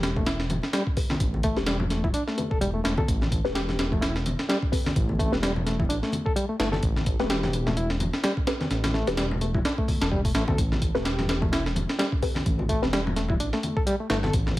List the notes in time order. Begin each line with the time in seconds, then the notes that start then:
Already playing: E1 C4 G4 A4 B4
0.03 snare, closed hi-hat
0.16 A3, kick, low conga
0.26 E4, snare, closed hi-hat
0.40 snare
0.50 closed hi-hat, high conga, low conga
0.63 snare
0.73 G3, snare, closed hi-hat
0.87 kick
0.97 C4 G4 A4 B4, kick, open hi-hat
1.10 snare, high conga
1.20 A1, kick, closed hi-hat
1.34 high conga
1.43 A3, kick, closed hi-hat
1.57 E1 C4 G4 A4 B4, snare
1.66 G3, snare, closed hi-hat
1.80 low conga
1.90 A3, snare, closed hi-hat
2.04 E4, kick, low conga
2.14 D4, closed hi-hat
2.27 A3, snare
2.37 C4 G4 A4 B4, closed hi-hat, high conga
2.51 E1 A4, kick
2.61 E1 G3, closed hi-hat
2.74 A3
2.84 E1 A3, snare, closed hi-hat
2.98 A4, kick, high conga
3.08 A1, kick, closed hi-hat
3.21 snare, high conga
3.32 kick, closed hi-hat
3.44 E1 A3 C4 G4 A4 B4, snare
3.55 G4, snare, closed hi-hat
3.68 snare, low conga
3.79 snare, closed hi-hat
3.92 A3, kick, low conga
4.01 E4, snare, closed hi-hat
4.16 snare
4.26 closed hi-hat, high conga, low conga
4.39 snare
4.48 G3, snare, closed hi-hat
4.62 kick
4.72 C4 G4 A4 B4, kick, open hi-hat
4.86 snare, high conga
4.96 A1, kick, closed hi-hat
5.09 high conga
5.19 A3, kick, closed hi-hat
5.32 E1 C4 G4 A4 B4, snare
5.43 G3, snare, closed hi-hat
5.56 low conga
5.66 A3, snare, closed hi-hat
5.79 E4, kick, low conga
5.89 A1 D4, closed hi-hat
6.03 A3, snare
6.12 closed hi-hat, high conga
6.26 A4, kick
6.36 G3, closed hi-hat
6.49 A3
6.59 G1 A3, snare, closed hi-hat
6.72 A4, snare, high conga
6.83 A1, kick, closed hi-hat
6.96 snare, high conga
7.06 kick, closed hi-hat
7.20 E1 A3 C4 G4 A4 B4, snare
7.30 G4, snare, closed hi-hat
7.43 snare, low conga
7.53 closed hi-hat
7.66 A3, snare, low conga
7.77 E4, closed hi-hat
7.90 snare
8.00 closed hi-hat, high conga, low conga
8.13 snare
8.24 G3, snare, closed hi-hat
8.37 kick
8.47 C4 G4 A4 B4, snare, closed hi-hat
8.61 snare, high conga
8.71 A1, snare, closed hi-hat
8.84 snare, closed hi-hat, high conga
8.94 A3, snare
9.07 E1 C4 G4 A4 B4, snare, closed hi-hat
9.17 G3, snare, closed hi-hat
9.31 low conga
9.41 A3, closed hi-hat
9.54 E4, kick, low conga
9.65 D4, snare, closed hi-hat
9.78 A3, kick
9.88 kick, open hi-hat, high conga
10.01 E1 A4, snare, closed hi-hat
10.12 G3, kick
10.25 A3, kick, open hi-hat
10.35 A1 A3, snare, closed hi-hat
10.48 D2 A4, kick, high conga
10.58 A1, kick, closed hi-hat
10.72 snare, high conga
10.82 kick, closed hi-hat
10.95 E1 A3 C4 G4 A4 B4, snare
11.05 G4, snare, closed hi-hat
11.19 snare, low conga
11.29 snare, closed hi-hat
11.41 A3, kick, high bongo, low conga
11.52 E4, snare, closed hi-hat
11.66 snare
11.76 closed hi-hat, high conga, low conga
11.89 snare
11.98 G3, snare, closed hi-hat
12.12 kick
12.22 C4 G4 A4 B4, kick, open hi-hat
12.35 snare, high conga
12.46 A1, kick, closed hi-hat
12.59 high bongo, high conga
12.69 A3, kick, closed hi-hat
12.82 E1 C4 G4 A4 B4, snare
12.93 G3, snare, closed hi-hat
13.07 low conga
13.16 A3, snare, closed hi-hat
13.28 E4, kick, low conga
13.40 A1 D4, closed hi-hat
13.53 A3, snare
13.63 closed hi-hat, high conga
13.77 A4, kick
13.86 G3, closed hi-hat
14.00 A3
14.10 G1 A3, snare, closed hi-hat
14.23 A4, snare, high conga
14.33 A1, kick, closed hi-hat
14.47 snare, high conga